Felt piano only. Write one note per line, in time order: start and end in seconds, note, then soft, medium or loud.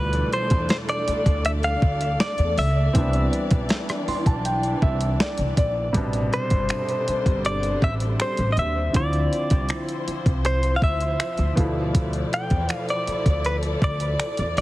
0.00 2.52 B2 medium
0.00 2.55 E3 medium
0.00 2.53 F3 medium
0.00 2.54 G3 medium
0.00 2.54 A3 medium
2.93 5.91 E3 medium
2.93 5.91 G3 medium
2.93 5.92 B3 medium
2.93 5.90 C4 medium
2.98 5.92 D4 medium
4.08 4.25 C6 medium
4.27 4.44 A5 medium
4.45 4.80 G5 medium
4.83 5.17 E5 medium
5.20 5.55 D5 medium
5.58 5.93 D5 medium
5.93 8.91 B2 medium
5.93 8.90 C3 medium
5.93 8.90 G3 medium
5.97 8.92 D4 medium
8.93 11.52 D3 medium
8.93 11.53 F3 medium
8.93 11.54 C4 medium
8.98 11.55 E4 medium
11.55 14.52 B2 medium
11.55 14.53 F3 medium
11.55 14.54 A3 medium
11.60 14.55 E4 medium